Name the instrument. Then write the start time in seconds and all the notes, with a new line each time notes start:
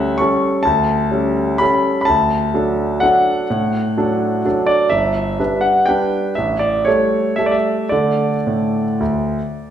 grand piano
Already playing: D2 G3 C#4 A4 E5 F#5
0.18 G3 C#4 A4 C#6
0.63 D2 A5
1.12 G3 C#4 A4
1.58 G3 C#4 A4 B5
2.01 B5
2.05 D2 A5
2.54 F#3 D4 A4
3.00 F#3 D4 A4 F#5
3.50 A2
3.97 F#3 D4 A4
4.45 F#3 D4 A4
4.67 D5
4.90 G1 E5
5.39 G3 D4 B4
5.61 F#5
5.86 G3 D4 B4 G5
6.35 A1 E5
6.59 D5
6.85 G3 A3 A4 C#5
7.36 G3 A3 A4 E5
7.46 D5
7.51 E5
7.89 D3 A3 A4 D5
8.47 A2
9.00 D2